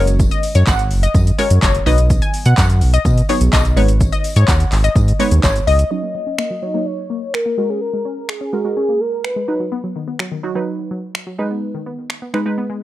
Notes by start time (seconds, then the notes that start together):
Already playing: F#1 G#3 C#4 F#4 A#4
0.07 closed hi-hat, tambourine, shaker
0.20 kick, tambourine, shaker
0.31 D#5, closed hi-hat, shaker
0.43 open hi-hat, tambourine, shaker
0.55 F#2 C#5, closed hi-hat, tambourine, shaker
0.67 G#1 F#5, kick, clap, tambourine, shaker
0.79 closed hi-hat, shaker
0.91 F#1, open hi-hat, tambourine, shaker
1.03 D#5, closed hi-hat, shaker
1.15 F#2, kick, tambourine, shaker
1.27 closed hi-hat, shaker
1.39 G#3 C#4 F#4 A#4 C#5, open hi-hat, tambourine, shaker
1.50 F#2, closed hi-hat, shaker
1.62 F#1 C#5, kick, clap, tambourine, shaker
1.75 closed hi-hat, shaker
1.86 B1 F#3 B3 D#4 B4 D#5, open hi-hat, tambourine, shaker
1.98 closed hi-hat, shaker
2.10 kick, tambourine, shaker
2.22 G#5, closed hi-hat, shaker
2.34 open hi-hat, tambourine, shaker
2.46 B2 F#5, closed hi-hat, shaker
2.58 F#2 F#5, kick, clap, tambourine, shaker
2.69 closed hi-hat, tambourine, shaker
2.81 B1, open hi-hat, tambourine, shaker
2.94 D#5, closed hi-hat, shaker
3.05 B2, kick, tambourine, shaker
3.18 closed hi-hat, shaker
3.29 F#3 B3 D#4 G#4 C#5, open hi-hat, tambourine, shaker
3.41 B1, closed hi-hat, shaker
3.53 B1 D#5, kick, clap, tambourine, shaker
3.65 closed hi-hat, shaker
3.77 G#1 G#3 B3 D#4 B4 C#5, open hi-hat, tambourine, shaker
3.88 closed hi-hat, shaker
4.01 kick, tambourine, shaker
4.12 D#5, closed hi-hat, tambourine, shaker
4.24 open hi-hat, tambourine, shaker
4.36 G#2 C#5, closed hi-hat, tambourine, shaker
4.48 D#2 F#5, kick, clap, tambourine, shaker
4.60 closed hi-hat, tambourine, shaker
4.72 G#1, clap, open hi-hat, tambourine, shaker
4.84 D#5, closed hi-hat, shaker
4.96 G#2, kick, tambourine, shaker
5.08 closed hi-hat, shaker
5.19 G#3 B3 D#4 B4 C#5, open hi-hat, tambourine, shaker
5.31 D#2, closed hi-hat, shaker
5.43 G#1 C#5, kick, clap, tambourine, shaker
5.56 closed hi-hat, shaker
5.67 C#2 D#5, open hi-hat, tambourine, shaker
5.79 closed hi-hat, shaker
5.91 F#3 C#4 D#4 C#5
6.03 A#3
6.15 F#3
6.27 C#4
6.38 A#3 D#5, finger snap
6.50 F#3
6.62 F#3 D#4 C#5
6.74 F#3 A#3 D#4 C#5
6.86 C#5
7.10 A#3
7.33 A#4, finger snap
7.46 A#3
7.58 G#3 F#4 A#4
7.69 C#4 G#4
7.81 A#4
7.93 G#3
8.05 C#4
8.29 G#4, finger snap
8.41 C#4
8.53 G#3 F#4 A#4
8.65 G#3 F#4 A#4
8.76 C#4 G#4
8.89 A#3
9.00 A#4
9.24 B4, finger snap
9.36 G#3
9.48 F#3 D#4 B4
9.60 F#3
9.72 B3
9.84 F#3
9.96 D#3
10.08 B3
10.19 F#3, finger snap
10.32 D#3
10.43 F#3 D#4 F#4
10.55 F#3 D#4 B4
10.91 F#3
11.15 finger snap
11.27 F#3
11.39 G#3 D#4 B4
11.50 B3
11.74 D#3
11.86 B3
12.10 finger snap
12.22 B3
12.34 G#3 D#4 B4, finger snap
12.46 G#3 D#4 B4
12.58 B3
12.70 G#3